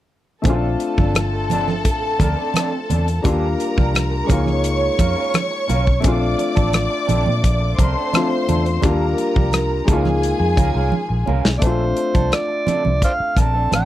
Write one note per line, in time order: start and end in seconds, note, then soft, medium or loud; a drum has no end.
0.42 0.75 A#1 medium
0.42 3.19 A3 medium
0.42 3.20 C4 medium
0.42 0.66 C4 medium
0.42 0.67 D4 medium
0.42 3.20 A4 medium
0.42 3.20 A5 medium
0.42 kick medium
0.42 closed hi-hat medium
0.42 low conga medium
0.47 3.21 D4 medium
0.47 3.23 F4 medium
0.47 0.67 A4 medium
0.80 muted clean electric guitar stroke soft
0.80 closed hi-hat medium
0.98 1.85 G1 medium
0.98 1.15 C4 soft
0.98 1.15 D4 soft
0.98 1.14 A4 soft
0.98 kick medium
0.98 high conga medium
1.14 muted clean electric guitar stroke soft
1.14 cross-stick loud
1.14 closed hi-hat medium
1.14 high conga soft
1.34 muted clean electric guitar stroke soft
1.50 1.72 C4 medium
1.50 1.68 D4 medium
1.50 1.67 A4 medium
1.50 closed hi-hat medium
1.50 muted conga soft
1.50 high conga medium
1.50 low conga medium
1.68 muted clean electric guitar stroke soft
1.68 cross-stick soft
1.68 high conga medium
1.85 2.14 A1 medium
1.85 muted clean electric guitar stroke soft
1.85 kick medium
1.85 closed hi-hat medium
2.02 muted clean electric guitar stroke soft
2.19 2.34 D2 medium
2.19 2.36 C4 soft
2.19 2.36 D4 medium
2.19 2.36 A#4 medium
2.19 kick medium
2.19 cross-stick soft
2.19 closed hi-hat medium
2.19 high conga medium
2.36 2.53 C4 soft
2.36 2.54 D4 soft
2.36 2.54 A4 medium
2.54 2.76 C4 medium
2.54 2.72 D4 medium
2.54 2.71 A4 medium
2.54 cross-stick medium
2.54 closed hi-hat medium
2.54 high conga medium
2.72 muted clean electric guitar stroke soft
2.89 3.20 E2 medium
2.89 3.06 C4 soft
2.89 3.07 D4 soft
2.89 3.06 A4 soft
2.89 closed hi-hat medium
2.89 low conga medium
3.08 muted clean electric guitar stroke soft
3.08 closed hi-hat soft
3.22 3.54 D#2 medium
3.22 4.28 G3 medium
3.22 4.26 A#3 medium
3.22 3.46 D4 medium
3.22 4.29 D4 medium
3.22 4.30 F4 medium
3.22 3.46 G4 medium
3.22 3.46 A4 medium
3.22 4.27 A#4 medium
3.22 4.27 A#5 medium
3.22 kick medium
3.22 closed hi-hat medium
3.22 low conga medium
3.59 muted clean electric guitar stroke soft
3.59 closed hi-hat medium
3.77 4.22 C2 medium
3.77 3.93 D4 soft
3.77 3.93 G4 soft
3.77 3.94 A#4 soft
3.77 kick medium
3.77 high conga medium
3.94 muted clean electric guitar stroke soft
3.94 cross-stick loud
3.94 closed hi-hat medium
3.94 high conga soft
4.12 muted clean electric guitar stroke soft
4.25 5.98 G#3 medium
4.25 5.99 A#3 medium
4.29 4.89 C#2 medium
4.29 4.51 C#4 medium
4.29 6.01 D#4 medium
4.29 4.45 F4 medium
4.29 6.02 F4 medium
4.29 4.44 A#4 medium
4.29 6.01 C#5 medium
4.29 6.01 C#6 medium
4.29 kick medium
4.29 closed hi-hat medium
4.29 muted conga soft
4.29 high conga medium
4.29 low conga medium
4.45 muted clean electric guitar stroke soft
4.45 cross-stick soft
4.45 high conga medium
4.63 muted clean electric guitar stroke soft
4.63 closed hi-hat medium
4.82 muted clean electric guitar stroke soft
4.99 5.14 F2 medium
4.99 5.16 C#4 medium
4.99 5.16 F4 medium
4.99 5.15 A#4 medium
4.99 kick medium
4.99 cross-stick soft
4.99 closed hi-hat medium
4.99 high conga medium
5.16 5.34 C#4 soft
5.16 5.34 F4 soft
5.16 5.33 A#4 soft
5.34 cross-stick medium
5.34 closed hi-hat medium
5.34 high conga medium
5.51 muted clean electric guitar stroke soft
5.68 5.99 B1 medium
5.68 5.90 C#4 medium
5.68 5.85 F4 medium
5.68 5.84 A#4 medium
5.68 closed hi-hat medium
5.68 low conga medium
5.85 muted clean electric guitar stroke soft
5.85 kick medium
6.00 8.08 A3 medium
6.00 6.25 C4 medium
6.00 8.09 C4 medium
6.00 6.25 D4 medium
6.00 6.26 A4 medium
6.00 closed hi-hat medium
6.00 muted conga soft
6.00 low conga medium
6.04 6.34 A#1 medium
6.04 8.10 D4 medium
6.04 8.11 F4 medium
6.04 7.75 D5 medium
6.04 7.75 D6 medium
6.04 kick medium
6.38 muted clean electric guitar stroke soft
6.38 closed hi-hat medium
6.38 muted conga soft
6.55 6.86 A1 medium
6.55 6.71 C4 soft
6.55 6.72 D4 medium
6.55 6.72 A4 medium
6.55 kick medium
6.55 closed hi-hat soft
6.55 high conga medium
6.73 muted clean electric guitar stroke soft
6.73 cross-stick loud
6.73 closed hi-hat medium
6.73 muted conga soft
6.73 high conga soft
6.90 muted clean electric guitar stroke soft
7.07 7.24 A#1 medium
7.07 7.29 C4 medium
7.07 7.25 D4 medium
7.07 7.23 A4 medium
7.07 closed hi-hat medium
7.07 muted conga soft
7.07 high conga medium
7.07 low conga medium
7.25 7.42 A#2 medium
7.25 muted clean electric guitar stroke soft
7.25 high conga medium
7.43 7.73 A#1 medium
7.43 muted clean electric guitar stroke soft
7.43 kick medium
7.43 closed hi-hat medium
7.43 muted conga soft
7.61 muted clean electric guitar stroke soft
7.78 7.93 C2 medium
7.78 7.95 C4 medium
7.78 7.95 D4 medium
7.78 7.95 A#4 medium
7.78 8.82 C5 medium
7.78 8.81 C6 medium
7.78 kick medium
7.78 closed hi-hat medium
7.78 muted conga soft
7.78 high conga medium
7.95 8.11 C4 soft
7.95 8.12 D4 soft
7.95 8.13 A4 soft
8.12 8.83 A3 medium
8.12 8.34 C4 medium
8.12 8.84 C4 soft
8.12 8.30 D4 medium
8.12 8.82 D4 soft
8.12 8.29 A4 medium
8.12 cross-stick medium
8.12 closed hi-hat medium
8.12 high conga medium
8.17 8.84 F4 medium
8.30 muted clean electric guitar stroke soft
8.47 8.78 E2 medium
8.47 8.65 C4 soft
8.47 8.65 D4 medium
8.47 8.65 A4 medium
8.47 closed hi-hat medium
8.47 low conga medium
8.66 muted clean electric guitar stroke soft
8.66 closed hi-hat soft
8.81 9.13 D#2 medium
8.81 9.87 G3 medium
8.81 9.86 A#3 medium
8.81 9.04 D4 medium
8.81 9.88 D4 medium
8.81 9.89 F4 medium
8.81 9.05 G4 medium
8.81 9.05 A4 medium
8.81 9.86 A#4 medium
8.81 9.86 A#5 medium
8.81 kick medium
8.81 closed hi-hat medium
8.81 muted conga soft
8.81 low conga medium
9.17 muted clean electric guitar stroke soft
9.17 closed hi-hat medium
9.17 muted conga soft
9.34 9.80 C2 medium
9.34 9.51 D4 soft
9.34 9.51 G4 soft
9.34 9.52 A#4 soft
9.34 kick medium
9.34 high conga medium
9.52 cross-stick medium
9.52 closed hi-hat medium
9.52 muted conga soft
9.52 high conga soft
9.70 muted clean electric guitar stroke soft
9.85 10.32 C#2 medium
9.85 11.58 G#3 medium
9.85 11.59 A#3 medium
9.85 10.09 C#4 medium
9.85 10.04 F4 medium
9.85 11.59 G#4 medium
9.85 10.03 A#4 medium
9.85 11.59 G#5 medium
9.85 kick medium
9.85 closed hi-hat medium
9.85 high conga medium
9.85 low conga medium
9.91 11.61 D#4 medium
9.91 11.62 F4 medium
10.04 muted clean electric guitar stroke soft
10.04 cross-stick soft
10.04 high conga medium
10.21 muted clean electric guitar stroke soft
10.21 closed hi-hat medium
10.40 10.55 F2 medium
10.40 muted clean electric guitar stroke soft
10.57 10.72 C#2 medium
10.57 10.74 C#4 soft
10.57 10.75 F4 soft
10.57 10.73 A#4 medium
10.57 kick medium
10.57 closed hi-hat medium
10.57 high conga medium
10.75 10.90 C2 medium
10.75 10.93 C#4 soft
10.75 10.92 F4 soft
10.75 10.92 A#4 soft
10.92 high conga medium
11.09 11.25 A#1 medium
11.09 muted clean electric guitar stroke soft
11.26 11.43 C2 medium
11.26 11.48 C#4 medium
11.26 11.45 F4 medium
11.26 11.43 A#4 medium
11.26 muted conga soft
11.26 low conga medium
11.45 11.60 B1 medium
11.45 muted clean electric guitar stroke soft
11.45 snare medium
11.58 13.85 A3 medium
11.58 11.83 C4 medium
11.58 11.84 D4 medium
11.58 11.65 D5 medium
11.58 closed hi-hat medium
11.58 muted conga soft
11.62 11.92 A#1 medium
11.62 13.85 C4 soft
11.62 13.85 D4 soft
11.62 11.84 A4 medium
11.62 12.35 C5 medium
11.62 kick loud
11.66 13.85 F4 medium
11.96 muted clean electric guitar stroke soft
11.96 closed hi-hat medium
12.14 12.30 C2 medium
12.14 12.31 C4 soft
12.14 12.31 D4 soft
12.14 12.31 A4 soft
12.14 kick medium
12.14 closed hi-hat soft
12.14 high conga medium
12.32 13.03 D5 medium
12.32 cross-stick loud
12.32 closed hi-hat medium
12.32 muted conga soft
12.48 muted clean electric guitar stroke soft
12.66 12.88 C4 medium
12.66 12.84 D4 medium
12.66 12.83 A4 medium
12.66 muted fingered electric bass stroke soft
12.66 closed hi-hat medium
12.66 muted conga soft
12.66 high conga medium
12.66 low conga medium
12.84 13.00 C2 medium
12.84 muted clean electric guitar stroke soft
12.84 high conga medium
13.02 13.12 C5 medium
13.02 13.12 D5 medium
13.02 13.41 F5 medium
13.02 muted clean electric guitar stroke soft
13.02 kick medium
13.02 closed hi-hat medium
13.02 muted conga soft
13.19 muted clean electric guitar stroke soft
13.19 muted fingered electric bass stroke soft
13.36 13.66 A#1 medium
13.36 13.54 C4 soft
13.36 13.54 D4 medium
13.36 13.53 A#4 medium
13.36 13.73 A5 medium
13.36 kick medium
13.36 cross-stick soft
13.36 closed hi-hat medium
13.36 high conga medium
13.54 13.70 C4 soft
13.54 13.72 D4 soft
13.54 13.71 A4 soft
13.71 13.85 A1 medium
13.71 13.85 C4 medium
13.71 13.85 D4 medium
13.71 13.85 A4 medium
13.71 cross-stick medium
13.71 closed hi-hat medium
13.71 muted conga soft
13.71 high conga medium
13.75 13.85 G5 medium